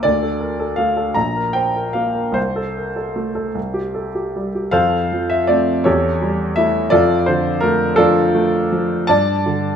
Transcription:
0.03 D2 D5
0.23 A4
0.40 A#4
0.60 A4
0.76 A3 F5
0.97 A4
1.14 A#1 A#5
1.36 A#4
1.53 C5 G5
1.76 A#4
1.93 A#3 F5
2.15 A#4
2.32 C2 C5
2.56 A4
2.77 A#4
2.96 A4
3.16 A3
3.35 A4
3.55 C2
3.74 G4
3.95 A4
4.15 G4
4.36 G3
4.55 G4
4.71 F2 A4 C5 F5
5.12 F3
5.30 E5
5.47 A3 C4 D5
5.84 E2 G4 A4 C#5
6.22 G3
6.56 A3 E4 E5
6.90 F2 F4 A4 D5
7.26 D3 C5
7.61 A3 A#4
7.96 F3 D4 F4 A4
8.35 A3
8.72 F3
9.07 G2 D5 A5
9.46 D3

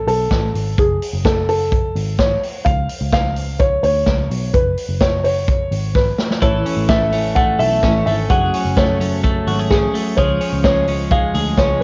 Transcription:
0.07 B1 A4, open hi-hat
0.31 A1, kick, snare, closed hi-hat
0.54 G#1, open hi-hat
0.78 F#1 G#4, kick, closed hi-hat
1.02 open hi-hat
1.13 F#1
1.25 A4, kick, snare, closed hi-hat
1.49 A4, open hi-hat
1.72 kick, closed hi-hat
1.95 G#1, open hi-hat
2.19 C#5, kick, snare, closed hi-hat
2.43 open hi-hat
2.65 C#2 F5, kick, closed hi-hat
2.89 open hi-hat
3.01 C#2
3.13 F5, kick, snare, closed hi-hat
3.36 open hi-hat
3.59 C#5, kick, closed hi-hat
3.83 D2 C#5, open hi-hat
4.06 C#2, kick, snare, closed hi-hat
4.30 B1, open hi-hat
4.54 F#1 B4, kick, closed hi-hat
4.77 open hi-hat
4.89 F#1
5.01 C#5, kick, snare, closed hi-hat
5.24 C#5, open hi-hat
5.48 kick, closed hi-hat
5.71 G#1, open hi-hat
5.95 B4, kick, snare
6.18 snare
6.30 snare
6.41 A1 A2 E3 A3 C#4 E4 A4 C#5, kick, closed hi-hat
6.54 A3 C#4 E4 A4
6.66 C#4, open hi-hat
6.77 A1
6.89 A3 E5, kick, snare, closed hi-hat
7.12 A3 C#4 E4 A4, open hi-hat
7.35 A3 F#5, kick, closed hi-hat
7.59 B1 A3 C#4 E4 A4 E5, open hi-hat
7.83 A1 A3 C#4 E4 A4, kick, snare, closed hi-hat
8.06 G#1 A3 C#4 E4 A4 E5, open hi-hat
8.30 F#1 F#3 A3 C#4 G#4 F#5, kick, closed hi-hat
8.42 A3 C#4 G#4
8.54 C#4, open hi-hat
8.65 F#1
8.77 A3 C#5, kick, snare, closed hi-hat
9.00 F#3 A3 C#4 G#4, open hi-hat
9.24 A3, kick, closed hi-hat
9.47 G#1 F#3 A3 C#4 F#4 G#4, open hi-hat
9.59 G#4
9.71 F#3 A3 C#4 G#4, kick, snare, closed hi-hat
9.94 F#3 A3 C#4 G#4, open hi-hat
10.17 C#2 C#3 F3 G#3 C#4 G#4 C#5, kick, closed hi-hat
10.29 G#3 C#4 G#4
10.41 C#4, open hi-hat
10.53 C#2
10.64 G#3 C#5, kick, snare, closed hi-hat
10.86 F3 G#3 C#4 G#4, open hi-hat
11.11 G#3 F5, kick, closed hi-hat
11.34 D2 F3 G#3 C#4 G#4, open hi-hat
11.57 C#2 F3 G#3 C#4 G#4 C#5, kick, snare, closed hi-hat
11.80 B4

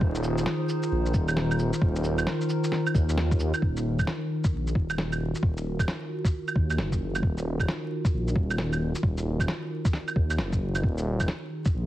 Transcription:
Already playing: D#3 D#4 F4 G#4 C5
0.01 D#1, kick
0.15 shaker
0.23 cabasa
0.38 shaker
0.46 snare
0.65 A#4, cabasa
0.83 shaker
0.92 A#1
1.06 shaker
1.14 D#1, kick, cabasa
1.28 claves, shaker
1.37 snare
1.51 claves, shaker
1.59 cabasa
1.73 shaker
1.82 D#1, kick
1.96 shaker
2.04 cabasa
2.18 claves, shaker
2.27 snare
2.41 shaker
2.49 cabasa
2.64 shaker
2.72 snare
2.86 claves, shaker
2.94 D#2, kick, cabasa
3.09 shaker
3.17 snare
3.31 kick, shaker
3.40 cabasa
3.54 claves, shaker
3.62 D#1, kick
3.77 shaker
3.99 kick, claves, shaker
4.07 snare
4.44 F#4, kick, shaker
4.52 A#1
4.67 shaker
4.75 D#1, kick
4.90 claves, shaker
4.98 snare
5.12 claves, shaker
5.35 shaker
5.43 D#1, kick
5.57 shaker
5.79 kick, claves, shaker
5.88 snare
6.25 kick, shaker
6.48 claves, shaker
6.55 D#2, kick
6.70 claves, shaker
6.78 F#1, snare
6.92 kick, shaker
7.15 claves, shaker
7.23 D#1, kick
7.38 shaker
7.60 kick, claves, shaker
7.68 snare
8.05 kick, shaker
8.14 A#1
8.28 shaker
8.36 D#1, kick
8.50 claves, shaker
8.58 snare
8.73 claves, shaker
8.95 shaker
9.03 D#1, kick
9.18 shaker
9.40 kick, claves, shaker
9.48 snare
9.85 kick, shaker
9.93 snare
10.08 claves, shaker
10.16 D#2, kick
10.30 claves, shaker
10.38 F#1, snare
10.53 kick, shaker
10.75 claves, shaker
10.83 D#1 D#3, kick
10.98 shaker
11.05 D#4
11.20 kick, claves, shaker
11.26 F4 G#4, snare
11.65 kick, shaker
11.74 A#1

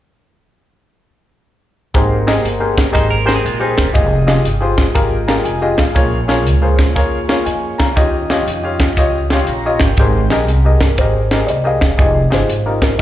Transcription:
1.94 G#1 G#2 A#3 G4 G#4 A#4 C5, kick, closed hi-hat
2.27 G4 G#4 A#4 D#5, snare, closed hi-hat
2.45 G1, closed hi-hat
2.60 G4 G#4 A#4 C5
2.78 kick, snare, closed hi-hat
2.92 G#1 D#4 G4 G#4 A#4 C5 D#5, kick, closed hi-hat
3.10 A#4
3.25 D#4 G4 G#4 A#4 C5, snare, closed hi-hat
3.35 C4 G#4
3.45 A#1 G#3 F4, closed hi-hat
3.60 G3 D#4 G4 G#4 A#4 C5
3.78 E1, kick, snare, closed hi-hat
3.93 F1 G3 F4 G4 G#4 D#5, kick, closed hi-hat
4.03 G#3
4.27 F4 G4 G#4 D#5, snare, closed hi-hat
4.45 G1, closed hi-hat
4.61 F4 G4 G#4 C5
4.78 kick, snare, closed hi-hat
4.94 G#1 F4 G4 G#4 A#4, kick, closed hi-hat
5.28 F4 G4 G#4 A#4, snare, closed hi-hat
5.45 F1 G#5, closed hi-hat
5.61 F4 G4 G#4 D#5
5.78 A1 F5, kick, snare, closed hi-hat
5.95 A#1 A#2 A#3 F4 G#4 A#4 C5 C#5, kick, closed hi-hat
6.01 C#5
6.28 F4 G#4 A#4 C#5, snare, closed hi-hat
6.46 C#2, closed hi-hat
6.62 F4 G#4 A#4 C5
6.79 kick, snare, closed hi-hat
6.95 D#2 F4 G#4 A#4 C#5, kick, closed hi-hat
7.28 F4 G#4 A#4 C#5, snare, closed hi-hat
7.45 F2 D#5 G#5, closed hi-hat
7.78 D2 F5 A#5, kick, snare, closed hi-hat
7.95 D#2 D#3 C#4 F4 G4 C#5 D#5, kick, closed hi-hat
8.30 F4 G4 C#5 D#5, snare, closed hi-hat
8.47 F2, closed hi-hat
8.63 F4 G4 C#5 F5
8.80 kick, snare, closed hi-hat
8.97 C#2 F4 G4 C#5 D#5, kick, closed hi-hat
9.30 F4 G4 C#5 D#5 F5 C6, snare, closed hi-hat
9.47 A#1 C#5 A#5, closed hi-hat
9.66 F4 G4 C#5 D#5
9.80 G1 A#4 G5, kick, snare, closed hi-hat
9.97 G#1 G#2 G4 G#4 A#4 C5, kick, closed hi-hat
10.30 A#1 G4 G#4 A#4 D#5, snare, closed hi-hat
10.48 C2, closed hi-hat
10.65 G4 G#4 A#4 D#5
10.80 A#4, kick, snare, closed hi-hat
10.98 G#1 G4 G#4 A#4 C5 D#5, kick, closed hi-hat
11.31 G4 G#4 A#4 D#5, snare, closed hi-hat
11.47 C2 D5 D#5, closed hi-hat
11.64 G4 G#4 A#4 D#5 F5
11.81 E1, kick, snare, closed hi-hat
11.98 F1 D#4 F4 G4 G#4 D#5, kick, closed hi-hat
12.30 G1 D#4 F4 G4 G#4 C5, snare, closed hi-hat
12.49 G#1, closed hi-hat
12.66 D#4 F4 G4 A#4
12.82 A#4, kick, snare, closed hi-hat
12.95 D#4 F4 G4 A#4

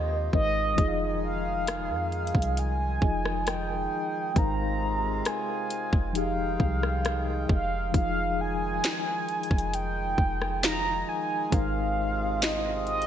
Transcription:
Already playing: D#2 C3 G#3 D#4 F4 G4 A#4 C5 D#5
0.33 G#1 G#3 D#4 A#4 C5 D#5, kick
0.76 F1 D#3 F3 G#3 D#4 F4 G#4, kick, closed hi-hat
0.80 G#4 D#5
0.88 F5
1.24 F5
1.67 cross-stick, closed hi-hat
1.90 F2
2.12 closed hi-hat
2.27 closed hi-hat
2.35 C2, kick
2.42 closed hi-hat
2.57 G#5, closed hi-hat
3.01 F1 F3 D#4 F4 G#4 D#5, kick
3.26 cross-stick
3.47 G5, cross-stick, closed hi-hat
4.34 G#1 C3 G#3 D#4 A#4 A#5, kick, closed hi-hat
4.38 C5 F5
5.25 G#5, cross-stick, closed hi-hat
5.70 closed hi-hat
5.93 F1, kick
6.13 D#3 F3 G#3 D#4 G4 G5, closed hi-hat
6.17 G#4 F5
6.60 C2, kick
6.83 cross-stick
7.05 cross-stick, closed hi-hat
7.49 F1 F5, kick
7.92 F1 D#3 F3 G#3 D#4 F4 G#4 F5, kick, closed hi-hat
7.96 G#4 F5
8.41 G#5
8.84 snare, closed hi-hat
9.29 closed hi-hat
9.43 closed hi-hat
9.51 F1, kick
9.58 closed hi-hat
9.74 G5, closed hi-hat
10.18 F1, kick
10.42 cross-stick
10.62 F3 D#4 F4 G#4 F5 A#5, snare, closed hi-hat
11.09 G#5
11.50 G#1 C3 G#3 D#4 F4 A#4 F5, kick, closed hi-hat
11.54 C5 F5
12.42 D#5, snare, closed hi-hat
12.87 D#5, closed hi-hat
13.02 closed hi-hat

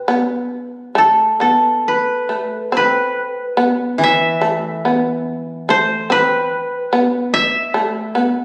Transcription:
Already playing: B4
0.08 B3
0.95 A3 A4
1.40 B3 A4
1.88 B4
2.29 A3
2.72 C4
2.77 B4
3.57 B3
3.98 E3
4.04 E5
4.41 A3
4.85 B3
5.69 A3 C5
6.10 C4 B4
6.93 B3
7.34 E5
7.74 A3
8.15 B3

